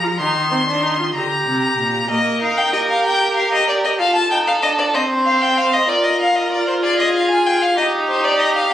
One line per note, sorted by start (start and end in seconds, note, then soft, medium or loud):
0.00 0.21 F3 medium
0.00 0.10 F4 medium
0.00 0.17 A#5 medium
0.19 1.14 D#3 medium
0.19 0.50 D#4 medium
0.19 1.13 C6 medium
0.51 0.58 C4 medium
0.67 0.85 D4 medium
0.83 0.99 D#4 medium
0.99 1.05 F4 medium
1.14 1.22 D3 medium
1.14 2.08 G4 medium
1.14 2.08 A#5 medium
1.46 1.77 C3 medium
1.78 2.09 A#2 medium
2.09 2.43 A#3 medium
2.09 3.96 A#4 medium
2.09 2.39 D#5 medium
2.42 2.74 D#4 medium
2.42 2.59 F5 medium
2.57 2.72 G5 medium
2.73 4.01 G4 medium
2.73 2.79 D#5 medium
2.89 3.04 F5 medium
3.04 3.35 G5 medium
3.36 3.52 F5 medium
3.52 3.68 D#5 medium
3.68 3.75 D5 medium
3.85 3.91 D#5 medium
3.99 4.31 F4 medium
3.99 4.96 A4 medium
3.99 4.15 F5 loud
4.15 4.30 A5 medium
4.31 4.62 D#4 medium
4.31 4.37 G5 medium
4.47 4.53 F5 medium
4.62 4.96 D4 medium
4.62 4.69 D#5 medium
4.79 4.85 D5 medium
4.94 5.87 C4 medium
4.94 5.88 C5 medium
4.94 5.02 D#5 medium
5.25 5.43 F5 medium
5.41 5.59 G5 medium
5.57 5.75 F5 medium
5.73 5.90 D#5 medium
5.88 7.78 F4 loud
5.88 6.84 A#4 medium
5.88 6.05 D5 medium
6.04 6.20 D#5 medium
6.21 6.37 F5 medium
6.36 6.51 D#5 medium
6.52 6.67 D5 medium
6.68 6.74 C5 medium
6.83 7.76 G#4 medium
6.83 6.98 D5 medium
6.99 7.13 D#5 medium
7.14 7.29 F5 medium
7.30 7.48 G#5 loud
7.46 7.63 G5 medium
7.61 7.77 F5 medium
7.77 8.72 D#4 medium
7.77 8.73 G4 loud
7.77 7.85 D#5 medium
8.09 8.26 C5 medium
8.24 8.41 D5 medium
8.39 8.55 D#5 medium
8.55 8.73 F5 medium